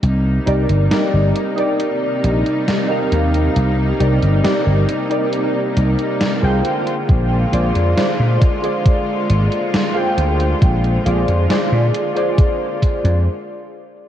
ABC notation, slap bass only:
X:1
M:4/4
L:1/16
Q:1/4=68
K:Cm
V:1 name="Slap bass" clef=bass
C,,2 C,, G,,, z G,,, z4 B,,, z3 E,,2 | C,,2 C,, G,,, z G,,, z4 C,, z2 C,, z2 | B,,,2 B,,, F,, z B,, z4 A,,, z3 D,,2 | B,,,2 B,,, F,, z B,, z4 z F,, z4 |]